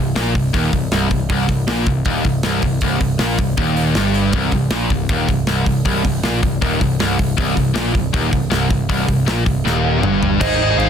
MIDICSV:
0, 0, Header, 1, 7, 480
1, 0, Start_track
1, 0, Key_signature, -3, "minor"
1, 0, Tempo, 379507
1, 1646, Time_signature, 4, 2, 24, 8
1, 13780, End_track
2, 0, Start_track
2, 0, Title_t, "Lead electric guitar"
2, 0, Program_c, 0, 29
2, 13163, Note_on_c, 0, 75, 106
2, 13635, Note_on_c, 0, 77, 91
2, 13659, Note_off_c, 0, 75, 0
2, 13780, Note_off_c, 0, 77, 0
2, 13780, End_track
3, 0, Start_track
3, 0, Title_t, "Lead electric guitar"
3, 0, Program_c, 1, 29
3, 13161, Note_on_c, 1, 72, 90
3, 13610, Note_off_c, 1, 72, 0
3, 13643, Note_on_c, 1, 72, 88
3, 13780, Note_off_c, 1, 72, 0
3, 13780, End_track
4, 0, Start_track
4, 0, Title_t, "Distorted electric guitar"
4, 0, Program_c, 2, 30
4, 13159, Note_on_c, 2, 44, 80
4, 13163, Note_on_c, 2, 51, 92
4, 13247, Note_off_c, 2, 44, 0
4, 13247, Note_off_c, 2, 51, 0
4, 13252, Note_on_c, 2, 44, 52
4, 13252, Note_on_c, 2, 51, 68
4, 13347, Note_off_c, 2, 44, 0
4, 13348, Note_off_c, 2, 51, 0
4, 13353, Note_on_c, 2, 44, 66
4, 13353, Note_on_c, 2, 51, 73
4, 13438, Note_off_c, 2, 44, 0
4, 13443, Note_on_c, 2, 44, 56
4, 13448, Note_off_c, 2, 51, 0
4, 13456, Note_on_c, 2, 51, 71
4, 13534, Note_off_c, 2, 44, 0
4, 13538, Note_off_c, 2, 51, 0
4, 13539, Note_on_c, 2, 44, 65
4, 13543, Note_on_c, 2, 51, 74
4, 13632, Note_off_c, 2, 44, 0
4, 13637, Note_on_c, 2, 44, 57
4, 13638, Note_off_c, 2, 51, 0
4, 13644, Note_on_c, 2, 51, 70
4, 13713, Note_off_c, 2, 44, 0
4, 13718, Note_on_c, 2, 44, 69
4, 13728, Note_off_c, 2, 51, 0
4, 13733, Note_on_c, 2, 51, 80
4, 13780, Note_off_c, 2, 44, 0
4, 13780, Note_off_c, 2, 51, 0
4, 13780, End_track
5, 0, Start_track
5, 0, Title_t, "Distorted electric guitar"
5, 0, Program_c, 3, 30
5, 0, Note_on_c, 3, 36, 64
5, 159, Note_off_c, 3, 36, 0
5, 197, Note_on_c, 3, 46, 98
5, 434, Note_off_c, 3, 46, 0
5, 441, Note_on_c, 3, 36, 70
5, 635, Note_off_c, 3, 36, 0
5, 675, Note_on_c, 3, 39, 100
5, 913, Note_off_c, 3, 39, 0
5, 921, Note_on_c, 3, 36, 73
5, 1115, Note_off_c, 3, 36, 0
5, 1167, Note_on_c, 3, 36, 96
5, 1379, Note_off_c, 3, 36, 0
5, 1394, Note_on_c, 3, 36, 69
5, 1592, Note_off_c, 3, 36, 0
5, 1648, Note_on_c, 3, 36, 107
5, 1854, Note_off_c, 3, 36, 0
5, 1869, Note_on_c, 3, 36, 65
5, 2069, Note_off_c, 3, 36, 0
5, 2120, Note_on_c, 3, 46, 100
5, 2355, Note_off_c, 3, 46, 0
5, 2374, Note_on_c, 3, 36, 71
5, 2562, Note_off_c, 3, 36, 0
5, 2605, Note_on_c, 3, 39, 102
5, 2838, Note_off_c, 3, 39, 0
5, 2857, Note_on_c, 3, 36, 66
5, 3043, Note_off_c, 3, 36, 0
5, 3084, Note_on_c, 3, 36, 88
5, 3318, Note_off_c, 3, 36, 0
5, 3333, Note_on_c, 3, 36, 74
5, 3521, Note_off_c, 3, 36, 0
5, 3574, Note_on_c, 3, 36, 102
5, 3786, Note_off_c, 3, 36, 0
5, 3801, Note_on_c, 3, 36, 65
5, 3995, Note_off_c, 3, 36, 0
5, 4034, Note_on_c, 3, 46, 102
5, 4273, Note_off_c, 3, 46, 0
5, 4292, Note_on_c, 3, 36, 72
5, 4480, Note_off_c, 3, 36, 0
5, 4521, Note_on_c, 3, 39, 96
5, 4996, Note_off_c, 3, 39, 0
5, 5016, Note_on_c, 3, 43, 102
5, 5483, Note_off_c, 3, 43, 0
5, 5489, Note_on_c, 3, 36, 101
5, 5720, Note_off_c, 3, 36, 0
5, 5733, Note_on_c, 3, 36, 63
5, 5921, Note_off_c, 3, 36, 0
5, 5958, Note_on_c, 3, 46, 99
5, 6194, Note_off_c, 3, 46, 0
5, 6212, Note_on_c, 3, 36, 78
5, 6401, Note_off_c, 3, 36, 0
5, 6453, Note_on_c, 3, 39, 97
5, 6682, Note_off_c, 3, 39, 0
5, 6695, Note_on_c, 3, 36, 67
5, 6883, Note_off_c, 3, 36, 0
5, 6921, Note_on_c, 3, 36, 97
5, 7145, Note_off_c, 3, 36, 0
5, 7160, Note_on_c, 3, 36, 78
5, 7355, Note_off_c, 3, 36, 0
5, 7399, Note_on_c, 3, 36, 98
5, 7628, Note_off_c, 3, 36, 0
5, 7643, Note_on_c, 3, 36, 67
5, 7837, Note_off_c, 3, 36, 0
5, 7884, Note_on_c, 3, 46, 108
5, 8118, Note_off_c, 3, 46, 0
5, 8123, Note_on_c, 3, 36, 67
5, 8317, Note_off_c, 3, 36, 0
5, 8367, Note_on_c, 3, 39, 97
5, 8600, Note_off_c, 3, 39, 0
5, 8613, Note_on_c, 3, 36, 72
5, 8802, Note_off_c, 3, 36, 0
5, 8855, Note_on_c, 3, 36, 104
5, 9079, Note_off_c, 3, 36, 0
5, 9095, Note_on_c, 3, 36, 76
5, 9283, Note_off_c, 3, 36, 0
5, 9320, Note_on_c, 3, 36, 115
5, 9543, Note_off_c, 3, 36, 0
5, 9558, Note_on_c, 3, 36, 67
5, 9755, Note_off_c, 3, 36, 0
5, 9788, Note_on_c, 3, 46, 107
5, 10030, Note_off_c, 3, 46, 0
5, 10035, Note_on_c, 3, 36, 77
5, 10234, Note_off_c, 3, 36, 0
5, 10284, Note_on_c, 3, 39, 98
5, 10504, Note_off_c, 3, 39, 0
5, 10509, Note_on_c, 3, 36, 74
5, 10711, Note_off_c, 3, 36, 0
5, 10752, Note_on_c, 3, 36, 92
5, 10986, Note_off_c, 3, 36, 0
5, 11001, Note_on_c, 3, 36, 70
5, 11197, Note_off_c, 3, 36, 0
5, 11244, Note_on_c, 3, 36, 104
5, 11463, Note_off_c, 3, 36, 0
5, 11478, Note_on_c, 3, 36, 71
5, 11675, Note_off_c, 3, 36, 0
5, 11717, Note_on_c, 3, 46, 100
5, 11955, Note_off_c, 3, 46, 0
5, 11960, Note_on_c, 3, 36, 74
5, 12156, Note_off_c, 3, 36, 0
5, 12206, Note_on_c, 3, 39, 100
5, 12675, Note_off_c, 3, 39, 0
5, 12675, Note_on_c, 3, 43, 99
5, 13153, Note_on_c, 3, 63, 83
5, 13154, Note_off_c, 3, 43, 0
5, 13162, Note_on_c, 3, 68, 112
5, 13236, Note_off_c, 3, 63, 0
5, 13241, Note_on_c, 3, 63, 60
5, 13257, Note_off_c, 3, 68, 0
5, 13263, Note_on_c, 3, 68, 70
5, 13337, Note_off_c, 3, 63, 0
5, 13344, Note_on_c, 3, 63, 77
5, 13358, Note_off_c, 3, 68, 0
5, 13363, Note_on_c, 3, 68, 86
5, 13432, Note_off_c, 3, 63, 0
5, 13437, Note_on_c, 3, 63, 67
5, 13445, Note_off_c, 3, 68, 0
5, 13450, Note_on_c, 3, 68, 79
5, 13526, Note_off_c, 3, 63, 0
5, 13531, Note_on_c, 3, 63, 79
5, 13544, Note_off_c, 3, 68, 0
5, 13549, Note_on_c, 3, 68, 86
5, 13622, Note_off_c, 3, 63, 0
5, 13627, Note_on_c, 3, 63, 63
5, 13634, Note_off_c, 3, 68, 0
5, 13639, Note_on_c, 3, 68, 84
5, 13723, Note_off_c, 3, 63, 0
5, 13728, Note_off_c, 3, 68, 0
5, 13732, Note_on_c, 3, 63, 72
5, 13733, Note_on_c, 3, 68, 97
5, 13780, Note_off_c, 3, 63, 0
5, 13780, Note_off_c, 3, 68, 0
5, 13780, End_track
6, 0, Start_track
6, 0, Title_t, "Picked electric bass"
6, 0, Program_c, 4, 34
6, 0, Note_on_c, 4, 24, 73
6, 193, Note_off_c, 4, 24, 0
6, 212, Note_on_c, 4, 34, 86
6, 432, Note_off_c, 4, 34, 0
6, 444, Note_on_c, 4, 24, 75
6, 668, Note_off_c, 4, 24, 0
6, 688, Note_on_c, 4, 27, 98
6, 910, Note_off_c, 4, 27, 0
6, 925, Note_on_c, 4, 24, 76
6, 1148, Note_off_c, 4, 24, 0
6, 1158, Note_on_c, 4, 24, 92
6, 1384, Note_off_c, 4, 24, 0
6, 1406, Note_on_c, 4, 24, 78
6, 1629, Note_off_c, 4, 24, 0
6, 1641, Note_on_c, 4, 24, 87
6, 1866, Note_off_c, 4, 24, 0
6, 1886, Note_on_c, 4, 24, 78
6, 2109, Note_off_c, 4, 24, 0
6, 2116, Note_on_c, 4, 34, 89
6, 2343, Note_off_c, 4, 34, 0
6, 2364, Note_on_c, 4, 24, 82
6, 2588, Note_off_c, 4, 24, 0
6, 2603, Note_on_c, 4, 27, 92
6, 2827, Note_off_c, 4, 27, 0
6, 2842, Note_on_c, 4, 24, 78
6, 3067, Note_off_c, 4, 24, 0
6, 3083, Note_on_c, 4, 24, 90
6, 3307, Note_off_c, 4, 24, 0
6, 3323, Note_on_c, 4, 24, 67
6, 3547, Note_off_c, 4, 24, 0
6, 3564, Note_on_c, 4, 24, 82
6, 3788, Note_off_c, 4, 24, 0
6, 3801, Note_on_c, 4, 24, 74
6, 4026, Note_off_c, 4, 24, 0
6, 4038, Note_on_c, 4, 34, 87
6, 4265, Note_off_c, 4, 34, 0
6, 4284, Note_on_c, 4, 24, 69
6, 4508, Note_off_c, 4, 24, 0
6, 4525, Note_on_c, 4, 27, 93
6, 4972, Note_off_c, 4, 27, 0
6, 5003, Note_on_c, 4, 31, 90
6, 5451, Note_off_c, 4, 31, 0
6, 5480, Note_on_c, 4, 24, 90
6, 5706, Note_off_c, 4, 24, 0
6, 5721, Note_on_c, 4, 24, 75
6, 5946, Note_off_c, 4, 24, 0
6, 5957, Note_on_c, 4, 34, 89
6, 6184, Note_off_c, 4, 34, 0
6, 6198, Note_on_c, 4, 24, 74
6, 6425, Note_off_c, 4, 24, 0
6, 6442, Note_on_c, 4, 27, 94
6, 6667, Note_off_c, 4, 27, 0
6, 6684, Note_on_c, 4, 24, 84
6, 6908, Note_off_c, 4, 24, 0
6, 6924, Note_on_c, 4, 24, 94
6, 7148, Note_off_c, 4, 24, 0
6, 7164, Note_on_c, 4, 24, 71
6, 7388, Note_off_c, 4, 24, 0
6, 7410, Note_on_c, 4, 24, 94
6, 7632, Note_off_c, 4, 24, 0
6, 7650, Note_on_c, 4, 24, 78
6, 7872, Note_off_c, 4, 24, 0
6, 7889, Note_on_c, 4, 34, 92
6, 8111, Note_off_c, 4, 34, 0
6, 8133, Note_on_c, 4, 24, 70
6, 8353, Note_off_c, 4, 24, 0
6, 8374, Note_on_c, 4, 27, 95
6, 8594, Note_off_c, 4, 27, 0
6, 8617, Note_on_c, 4, 24, 83
6, 8836, Note_off_c, 4, 24, 0
6, 8862, Note_on_c, 4, 24, 94
6, 9078, Note_off_c, 4, 24, 0
6, 9097, Note_on_c, 4, 24, 76
6, 9316, Note_off_c, 4, 24, 0
6, 9334, Note_on_c, 4, 24, 86
6, 9554, Note_off_c, 4, 24, 0
6, 9579, Note_on_c, 4, 24, 82
6, 9797, Note_off_c, 4, 24, 0
6, 9812, Note_on_c, 4, 34, 85
6, 10033, Note_off_c, 4, 34, 0
6, 10052, Note_on_c, 4, 24, 74
6, 10274, Note_off_c, 4, 24, 0
6, 10292, Note_on_c, 4, 27, 100
6, 10513, Note_off_c, 4, 27, 0
6, 10535, Note_on_c, 4, 24, 79
6, 10755, Note_off_c, 4, 24, 0
6, 10767, Note_on_c, 4, 24, 90
6, 10991, Note_off_c, 4, 24, 0
6, 11008, Note_on_c, 4, 24, 79
6, 11231, Note_off_c, 4, 24, 0
6, 11247, Note_on_c, 4, 24, 90
6, 11471, Note_off_c, 4, 24, 0
6, 11488, Note_on_c, 4, 24, 78
6, 11712, Note_off_c, 4, 24, 0
6, 11731, Note_on_c, 4, 34, 86
6, 11953, Note_off_c, 4, 34, 0
6, 11968, Note_on_c, 4, 24, 79
6, 12191, Note_off_c, 4, 24, 0
6, 12205, Note_on_c, 4, 27, 100
6, 12653, Note_off_c, 4, 27, 0
6, 12683, Note_on_c, 4, 31, 91
6, 13131, Note_off_c, 4, 31, 0
6, 13165, Note_on_c, 4, 32, 99
6, 13378, Note_off_c, 4, 32, 0
6, 13394, Note_on_c, 4, 32, 92
6, 13611, Note_off_c, 4, 32, 0
6, 13629, Note_on_c, 4, 32, 86
6, 13780, Note_off_c, 4, 32, 0
6, 13780, End_track
7, 0, Start_track
7, 0, Title_t, "Drums"
7, 202, Note_on_c, 9, 46, 72
7, 204, Note_on_c, 9, 38, 110
7, 328, Note_off_c, 9, 46, 0
7, 331, Note_off_c, 9, 38, 0
7, 444, Note_on_c, 9, 46, 52
7, 445, Note_on_c, 9, 36, 86
7, 570, Note_off_c, 9, 46, 0
7, 572, Note_off_c, 9, 36, 0
7, 684, Note_on_c, 9, 36, 97
7, 684, Note_on_c, 9, 46, 65
7, 810, Note_off_c, 9, 46, 0
7, 811, Note_off_c, 9, 36, 0
7, 923, Note_on_c, 9, 36, 90
7, 926, Note_on_c, 9, 46, 54
7, 1050, Note_off_c, 9, 36, 0
7, 1053, Note_off_c, 9, 46, 0
7, 1159, Note_on_c, 9, 46, 64
7, 1162, Note_on_c, 9, 38, 98
7, 1286, Note_off_c, 9, 46, 0
7, 1288, Note_off_c, 9, 38, 0
7, 1401, Note_on_c, 9, 46, 54
7, 1404, Note_on_c, 9, 36, 87
7, 1527, Note_off_c, 9, 46, 0
7, 1530, Note_off_c, 9, 36, 0
7, 1640, Note_on_c, 9, 46, 73
7, 1641, Note_on_c, 9, 36, 111
7, 1766, Note_off_c, 9, 46, 0
7, 1768, Note_off_c, 9, 36, 0
7, 1882, Note_on_c, 9, 36, 88
7, 1883, Note_on_c, 9, 46, 54
7, 2009, Note_off_c, 9, 36, 0
7, 2009, Note_off_c, 9, 46, 0
7, 2121, Note_on_c, 9, 46, 70
7, 2123, Note_on_c, 9, 38, 108
7, 2247, Note_off_c, 9, 46, 0
7, 2250, Note_off_c, 9, 38, 0
7, 2356, Note_on_c, 9, 46, 52
7, 2362, Note_on_c, 9, 36, 91
7, 2482, Note_off_c, 9, 46, 0
7, 2488, Note_off_c, 9, 36, 0
7, 2591, Note_on_c, 9, 46, 73
7, 2601, Note_on_c, 9, 36, 105
7, 2717, Note_off_c, 9, 46, 0
7, 2728, Note_off_c, 9, 36, 0
7, 2840, Note_on_c, 9, 46, 51
7, 2843, Note_on_c, 9, 36, 90
7, 2967, Note_off_c, 9, 46, 0
7, 2970, Note_off_c, 9, 36, 0
7, 3075, Note_on_c, 9, 46, 67
7, 3078, Note_on_c, 9, 38, 95
7, 3201, Note_off_c, 9, 46, 0
7, 3204, Note_off_c, 9, 38, 0
7, 3315, Note_on_c, 9, 46, 56
7, 3324, Note_on_c, 9, 36, 81
7, 3442, Note_off_c, 9, 46, 0
7, 3450, Note_off_c, 9, 36, 0
7, 3552, Note_on_c, 9, 46, 77
7, 3564, Note_on_c, 9, 36, 97
7, 3679, Note_off_c, 9, 46, 0
7, 3690, Note_off_c, 9, 36, 0
7, 3801, Note_on_c, 9, 46, 61
7, 3804, Note_on_c, 9, 36, 90
7, 3928, Note_off_c, 9, 46, 0
7, 3930, Note_off_c, 9, 36, 0
7, 4034, Note_on_c, 9, 46, 75
7, 4036, Note_on_c, 9, 38, 103
7, 4160, Note_off_c, 9, 46, 0
7, 4163, Note_off_c, 9, 38, 0
7, 4278, Note_on_c, 9, 46, 55
7, 4283, Note_on_c, 9, 36, 84
7, 4404, Note_off_c, 9, 46, 0
7, 4410, Note_off_c, 9, 36, 0
7, 4520, Note_on_c, 9, 46, 71
7, 4525, Note_on_c, 9, 36, 109
7, 4646, Note_off_c, 9, 46, 0
7, 4651, Note_off_c, 9, 36, 0
7, 4762, Note_on_c, 9, 46, 53
7, 4889, Note_off_c, 9, 46, 0
7, 4995, Note_on_c, 9, 46, 63
7, 4998, Note_on_c, 9, 38, 99
7, 5122, Note_off_c, 9, 46, 0
7, 5124, Note_off_c, 9, 38, 0
7, 5240, Note_on_c, 9, 46, 52
7, 5367, Note_off_c, 9, 46, 0
7, 5472, Note_on_c, 9, 46, 71
7, 5481, Note_on_c, 9, 36, 104
7, 5598, Note_off_c, 9, 46, 0
7, 5607, Note_off_c, 9, 36, 0
7, 5713, Note_on_c, 9, 46, 51
7, 5720, Note_on_c, 9, 36, 85
7, 5839, Note_off_c, 9, 46, 0
7, 5846, Note_off_c, 9, 36, 0
7, 5950, Note_on_c, 9, 46, 71
7, 5953, Note_on_c, 9, 38, 111
7, 6077, Note_off_c, 9, 46, 0
7, 6079, Note_off_c, 9, 38, 0
7, 6200, Note_on_c, 9, 46, 52
7, 6202, Note_on_c, 9, 36, 83
7, 6326, Note_off_c, 9, 46, 0
7, 6329, Note_off_c, 9, 36, 0
7, 6438, Note_on_c, 9, 46, 65
7, 6441, Note_on_c, 9, 36, 110
7, 6565, Note_off_c, 9, 46, 0
7, 6568, Note_off_c, 9, 36, 0
7, 6685, Note_on_c, 9, 36, 93
7, 6685, Note_on_c, 9, 46, 52
7, 6811, Note_off_c, 9, 46, 0
7, 6812, Note_off_c, 9, 36, 0
7, 6918, Note_on_c, 9, 46, 73
7, 6921, Note_on_c, 9, 38, 98
7, 7045, Note_off_c, 9, 46, 0
7, 7047, Note_off_c, 9, 38, 0
7, 7163, Note_on_c, 9, 46, 55
7, 7164, Note_on_c, 9, 36, 87
7, 7290, Note_off_c, 9, 46, 0
7, 7291, Note_off_c, 9, 36, 0
7, 7403, Note_on_c, 9, 46, 81
7, 7406, Note_on_c, 9, 36, 104
7, 7530, Note_off_c, 9, 46, 0
7, 7533, Note_off_c, 9, 36, 0
7, 7648, Note_on_c, 9, 36, 83
7, 7648, Note_on_c, 9, 46, 58
7, 7774, Note_off_c, 9, 46, 0
7, 7775, Note_off_c, 9, 36, 0
7, 7885, Note_on_c, 9, 46, 77
7, 7887, Note_on_c, 9, 38, 109
7, 8011, Note_off_c, 9, 46, 0
7, 8014, Note_off_c, 9, 38, 0
7, 8133, Note_on_c, 9, 36, 86
7, 8135, Note_on_c, 9, 46, 53
7, 8259, Note_off_c, 9, 36, 0
7, 8262, Note_off_c, 9, 46, 0
7, 8374, Note_on_c, 9, 36, 94
7, 8374, Note_on_c, 9, 46, 74
7, 8500, Note_off_c, 9, 36, 0
7, 8500, Note_off_c, 9, 46, 0
7, 8615, Note_on_c, 9, 36, 91
7, 8620, Note_on_c, 9, 46, 54
7, 8742, Note_off_c, 9, 36, 0
7, 8747, Note_off_c, 9, 46, 0
7, 8854, Note_on_c, 9, 46, 72
7, 8857, Note_on_c, 9, 38, 107
7, 8980, Note_off_c, 9, 46, 0
7, 8983, Note_off_c, 9, 38, 0
7, 9097, Note_on_c, 9, 36, 89
7, 9100, Note_on_c, 9, 46, 59
7, 9224, Note_off_c, 9, 36, 0
7, 9227, Note_off_c, 9, 46, 0
7, 9334, Note_on_c, 9, 46, 74
7, 9335, Note_on_c, 9, 36, 102
7, 9461, Note_off_c, 9, 46, 0
7, 9462, Note_off_c, 9, 36, 0
7, 9574, Note_on_c, 9, 46, 56
7, 9575, Note_on_c, 9, 36, 82
7, 9700, Note_off_c, 9, 46, 0
7, 9702, Note_off_c, 9, 36, 0
7, 9809, Note_on_c, 9, 46, 68
7, 9812, Note_on_c, 9, 38, 105
7, 9936, Note_off_c, 9, 46, 0
7, 9938, Note_off_c, 9, 38, 0
7, 10054, Note_on_c, 9, 36, 81
7, 10054, Note_on_c, 9, 46, 48
7, 10180, Note_off_c, 9, 36, 0
7, 10180, Note_off_c, 9, 46, 0
7, 10295, Note_on_c, 9, 36, 109
7, 10295, Note_on_c, 9, 46, 67
7, 10421, Note_off_c, 9, 36, 0
7, 10421, Note_off_c, 9, 46, 0
7, 10532, Note_on_c, 9, 46, 52
7, 10534, Note_on_c, 9, 36, 91
7, 10659, Note_off_c, 9, 46, 0
7, 10660, Note_off_c, 9, 36, 0
7, 10769, Note_on_c, 9, 46, 62
7, 10772, Note_on_c, 9, 38, 96
7, 10895, Note_off_c, 9, 46, 0
7, 10898, Note_off_c, 9, 38, 0
7, 11011, Note_on_c, 9, 36, 88
7, 11013, Note_on_c, 9, 46, 56
7, 11137, Note_off_c, 9, 36, 0
7, 11139, Note_off_c, 9, 46, 0
7, 11251, Note_on_c, 9, 36, 95
7, 11254, Note_on_c, 9, 46, 79
7, 11377, Note_off_c, 9, 36, 0
7, 11380, Note_off_c, 9, 46, 0
7, 11491, Note_on_c, 9, 36, 84
7, 11492, Note_on_c, 9, 46, 53
7, 11617, Note_off_c, 9, 36, 0
7, 11618, Note_off_c, 9, 46, 0
7, 11733, Note_on_c, 9, 46, 69
7, 11736, Note_on_c, 9, 38, 106
7, 11860, Note_off_c, 9, 46, 0
7, 11862, Note_off_c, 9, 38, 0
7, 11970, Note_on_c, 9, 36, 87
7, 11978, Note_on_c, 9, 46, 54
7, 12096, Note_off_c, 9, 36, 0
7, 12105, Note_off_c, 9, 46, 0
7, 12223, Note_on_c, 9, 38, 54
7, 12349, Note_off_c, 9, 38, 0
7, 12691, Note_on_c, 9, 45, 83
7, 12817, Note_off_c, 9, 45, 0
7, 12933, Note_on_c, 9, 43, 92
7, 13060, Note_off_c, 9, 43, 0
7, 13167, Note_on_c, 9, 36, 113
7, 13176, Note_on_c, 9, 49, 112
7, 13176, Note_on_c, 9, 57, 62
7, 13293, Note_off_c, 9, 36, 0
7, 13302, Note_off_c, 9, 49, 0
7, 13302, Note_off_c, 9, 57, 0
7, 13654, Note_on_c, 9, 57, 59
7, 13780, Note_off_c, 9, 57, 0
7, 13780, End_track
0, 0, End_of_file